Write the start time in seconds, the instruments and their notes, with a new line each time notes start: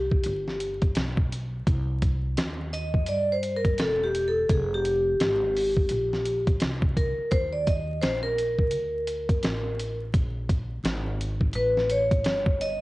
Already playing: upright bass C2, vibraphone G4
0.12 kick
0.24 upright bass G1, closed hi-hat
0.48 snare
0.60 closed hi-hat
0.82 kick, closed hi-hat
0.95 upright bass B1, snare, closed hi-hat
1.17 kick
1.32 closed hi-hat
1.67 upright bass C2, kick, closed hi-hat
2.02 kick, closed hi-hat
2.37 upright bass D#2, snare, closed hi-hat
2.73 vibraphone D#5, closed hi-hat
2.94 kick
3.06 upright bass G2, vibraphone D5, closed hi-hat
3.32 vibraphone C5
3.43 closed hi-hat
3.57 vibraphone A#4
3.65 kick, closed hi-hat
3.78 upright bass E1, vibraphone A4, snare, closed hi-hat
4.04 vibraphone G4
4.15 closed hi-hat
4.28 vibraphone A4
4.49 upright bass F1, vibraphone G#4, kick, closed hi-hat
4.74 vibraphone G4
4.85 closed hi-hat
5.20 upright bass G#1, snare, closed hi-hat
5.57 open hi-hat
5.77 kick
5.89 upright bass A#1, closed hi-hat
6.13 snare
6.25 closed hi-hat
6.47 kick, closed hi-hat
6.60 upright bass C2, snare, closed hi-hat
6.82 kick
6.97 vibraphone A#4, kick, closed hi-hat
7.18 muted upright bass stroke
7.31 upright bass D#2, vibraphone C5, kick, closed hi-hat
7.53 vibraphone D5
7.67 vibraphone D#5, kick, closed hi-hat
8.01 upright bass A#1, vibraphone C5, snare, closed hi-hat
8.23 vibraphone A#4
8.38 closed hi-hat
8.59 kick
8.71 upright bass D2, closed hi-hat
9.07 closed hi-hat
9.29 kick, closed hi-hat
9.43 upright bass A1, snare, closed hi-hat
9.79 closed hi-hat
10.14 upright bass A#1, kick, closed hi-hat
10.49 kick, closed hi-hat
10.84 upright bass G#1, snare, closed hi-hat
11.21 closed hi-hat
11.41 kick
11.53 upright bass A1, vibraphone B4, closed hi-hat
11.77 snare
11.90 vibraphone C#5, closed hi-hat
12.11 kick, closed hi-hat
12.24 upright bass G1, snare, closed hi-hat
12.46 kick
12.61 vibraphone D#5, closed hi-hat